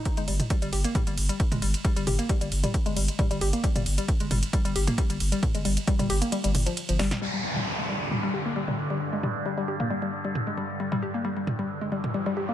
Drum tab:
RD |xxxxxxxxxxxxxxxx|xxxxxxxxxxxxxxxx|xxxxxxxxxxxxxxxx|xxxxxxxxxxxxxxxx|
HH |xxoxxxoxxxoxxxox|xxoxxxoxxxoxxxox|xxoxxxoxxxoxxxox|xxoxxxoxxxoxxxox|
SD |----------------|----------------|----------------|--------------oo|
T2 |---o----o----o--|--o----o----o---|-o----o----o----|o----o----o----o|
BD |o---o---o---o---|o---o---o---o---|o---o---o---o---|o---o-----------|

RD |----------------|----------------|----------------|
HH |----------------|----------------|----------------|
SD |----------------|----------------|----------------|
T2 |---o----o----o--|--o----o----o---|-o----o----o----|
BD |----------------|----------------|----------------|